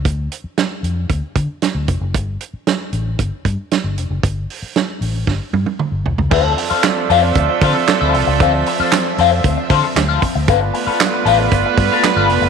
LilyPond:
<<
  \new Staff \with { instrumentName = "Clean electric guitar" } { \time 4/4 \key d \dorian \tempo 4 = 115 r1 | r1 | r1 | <a' c'' f''>8 r16 <a' c'' f''>16 r8 <a' c'' f''>16 r8. <a' c'' f''>16 r8 <a' c'' f''>8 r16 |
<a' c'' f''>16 r8 <a' c'' f''>16 r8 <a' c'' f''>16 r8. <a' c'' f''>16 r8 <a' c'' f''>16 r8 | <a' b' f''>16 r8 <a' b' f''>16 r8 <a' b' f''>16 r4 <a' b' f''>16 r16 <a' b' f''>16 r8 | }
  \new Staff \with { instrumentName = "Horn section" } { \time 4/4 \key d \dorian r1 | r1 | r1 | <a d' f' a'>1~ |
<a d' f' a'>2.~ <a d' f' a'>8 r8 | <b d' f' b'>1 | }
  \new Staff \with { instrumentName = "String machine" } { \time 4/4 \key d \dorian r1 | r1 | r1 | <f c' e''>1~ |
<f c' e''>1 | <a b f'>1 | }
  \new Staff \with { instrumentName = "Fingered electric bass" } { \clef bass \time 4/4 \key d \dorian d,8 r4 f,8 d,16 r16 d16 r8 d,16 f,,16 fis,,16 | g,,8 r4 a,,8 g,,16 r16 g,16 r8 g,,16 f,,16 fis,,16 | g,,8 r4 a,,8 g,,16 r16 g,16 r8 g,,16 c,16 cis,16 | d,8 r4 f,8 d,16 r16 d16 r8 d,16 c,16 cis,16 |
d,8 r4 f,8 d,16 r16 d16 r16 d,8 r16 d,16 | g,,8 r4 a,,8 g,,16 r16 g,16 r8 g,,16 f,,16 fis,,16 | }
  \new DrumStaff \with { instrumentName = "Drums" } \drummode { \time 4/4 <hh bd>8 hh8 <hh sn>8 hh8 <hh bd>8 <hh bd>8 <hh sn>8 <hh bd>8 | <hh bd>8 hh8 <hh sn>8 hh8 <hh bd>8 <hh bd>8 <hh sn>8 hh8 | <hh bd>8 hho8 <hh sn>8 hho8 <bd sn>8 tommh16 tommh16 toml8 tomfh16 tomfh16 | <cymc bd>8 hho8 <hc hh sn>8 hho8 <hh bd>8 <hho bd>8 <hc hh sn>8 hho8 |
<hh bd>8 hho8 <hc hh sn>8 hho8 <hh bd>8 <hho bd>8 <hc hh sn>8 <hho bd>8 | <hh bd>8 hho8 <hc hh sn>8 hho8 <hh bd>8 <hho bd>8 <hc hh sn>8 hho8 | }
>>